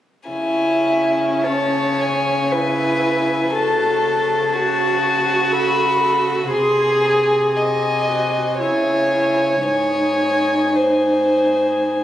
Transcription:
0.29 cello C#3, viola C#4, violin E4 G#5
1.44 violin C#5 A5
2.00 violin G#5
2.52 viola E4, violin B4 G#5
3.54 cello C#3, viola F#4, violin A4 A5
4.53 violin F#4 A5, viola F#4
5.52 viola A4, violin B5
6.01 viola A4
6.50 cello C3, violin G#4 C6, viola G#4
7.05 violin G#5
7.57 viola G#4, violin D#5
8.09 viola F#4
8.60 cello C#3, viola E4, violin C#5 G#5
9.13 viola E4
9.68 cello G#2, viola D#4, violin C#5 G#5
10.76 violin C5

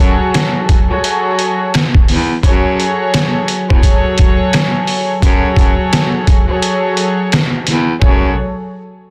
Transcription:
Already playing: string section F#3 F#4 G#4 A4 C#5
0.00 baritone saxophone F#2, closed hi-hat
0.34 cross-stick, snare, closed hi-hat
0.69 kick, closed hi-hat
0.89 string section F#3 F#4 G#4 A4 C#5
1.04 closed hi-hat
1.39 closed hi-hat
1.74 cross-stick, snare, closed hi-hat
1.95 kick
2.08 baritone saxophone E2, snare, open hi-hat
2.43 baritone saxophone F#2, string section F#3 F#4 G#4 A4 C#5, kick, closed hi-hat
2.80 closed hi-hat
3.14 cross-stick, snare, closed hi-hat
3.48 closed hi-hat
3.68 baritone saxophone E2, string section F#3 F#4 G#4 A4 C#5, kick
3.83 kick, closed hi-hat
4.18 kick, closed hi-hat
4.53 cross-stick, snare, closed hi-hat
4.87 open hi-hat
5.22 baritone saxophone F#2, string section F#3 F#4 G#4 A4 C#5, kick, closed hi-hat
5.56 baritone saxophone F#2, kick, closed hi-hat
5.93 cross-stick, snare, closed hi-hat
6.27 kick, closed hi-hat
6.47 string section F#3 F#4 G#4 A4 C#5
6.62 closed hi-hat
6.97 closed hi-hat
7.32 cross-stick, snare, closed hi-hat
7.67 baritone saxophone E2, snare, closed hi-hat
8.01 baritone saxophone F#2, string section F#3 F#4 G#4 A4 C#5, kick, floor tom

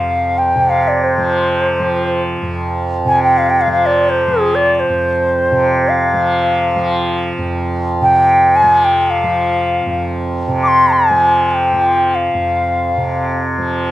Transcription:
Already playing: tanpura F2 C3 F3, bansuri F5
0.38 bansuri G5
0.56 tanpura C3
0.69 bansuri F5
0.83 bansuri F5
0.88 bansuri D5
1.03 bansuri C5
1.18 tanpura F3
1.79 tanpura F3
2.42 tanpura F2
3.05 tanpura C3, bansuri G#5
3.23 bansuri G5
3.38 bansuri F5
3.50 bansuri G5
3.61 bansuri F5
3.67 tanpura F3
3.72 bansuri F5
3.86 bansuri D5
4.09 bansuri C5
4.28 tanpura F3
4.41 bansuri G#4
4.55 bansuri D5
4.75 bansuri D5
4.80 bansuri C5
4.89 tanpura F2
5.52 tanpura C3
5.89 bansuri F5
6.13 tanpura F3
6.76 tanpura F3
7.38 tanpura F2
8.01 tanpura C3, bansuri G5
8.56 bansuri G#5
8.63 tanpura F3
8.81 bansuri G5 G#5
9.07 bansuri F5 G5
9.24 tanpura F3
9.86 tanpura F2
10.48 tanpura C3
10.63 bansuri D6
10.68 bansuri C6
10.92 bansuri G#5
11.10 tanpura F3
11.51 bansuri G5 G#5
11.73 tanpura F3
12.15 bansuri F5
12.34 tanpura F2
12.97 tanpura C3
13.58 tanpura F3

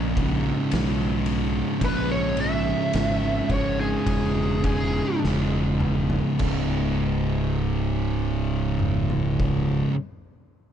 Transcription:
Already playing: fingered electric bass A#1, distorted electric guitar C#2 G#2 C#3
0.16 distorted electric guitar C#2 G#2 C#3, kick, ride
0.71 fingered electric bass B1, distorted electric guitar C#2 G#2 C#3, snare, ride
1.26 ride
1.80 fingered electric bass A#1, distorted electric guitar C#2 G#2 C#3, kick, ride
1.85 lead electric guitar B4
2.11 lead electric guitar C#5
2.37 lead electric guitar E5, ride
2.93 fingered electric bass G#1, snare, ride
3.50 fingered electric bass G#1, lead electric guitar C#5, kick, ride
3.81 lead electric guitar G#4
4.07 fingered electric bass E1, kick, ride
4.64 distorted electric guitar C#2 G#2 C#3, lead electric guitar G#4, kick, ride
5.21 fingered electric bass E1, distorted electric guitar C#2 G#2 C#3, snare
5.80 mid tom
6.10 floor tom
6.39 fingered electric bass C#1, distorted electric guitar C#2 G#2, kick, crash
6.44 distorted electric guitar C#3
8.79 mid tom
9.10 floor tom
9.40 kick

